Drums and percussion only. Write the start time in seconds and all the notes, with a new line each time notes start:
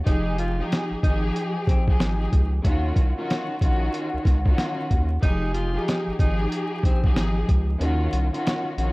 0.06 kick, closed hi-hat
0.38 closed hi-hat
0.72 snare, closed hi-hat
1.03 kick, closed hi-hat
1.36 closed hi-hat
1.67 kick, closed hi-hat
1.88 kick
2.00 snare, closed hi-hat
2.33 kick, closed hi-hat
2.65 kick, closed hi-hat
2.96 kick, closed hi-hat
3.30 snare, closed hi-hat
3.61 kick, closed hi-hat
3.94 closed hi-hat
4.25 kick, snare, closed hi-hat
4.46 kick
4.58 snare, closed hi-hat
4.91 kick, closed hi-hat
5.23 kick, closed hi-hat
5.54 closed hi-hat
5.88 snare, closed hi-hat
6.19 kick, closed hi-hat
6.52 closed hi-hat
6.83 kick, closed hi-hat
7.04 kick
7.16 snare, closed hi-hat
7.49 kick, closed hi-hat
7.81 closed hi-hat
8.13 closed hi-hat
8.34 closed hi-hat
8.47 snare, closed hi-hat
8.78 closed hi-hat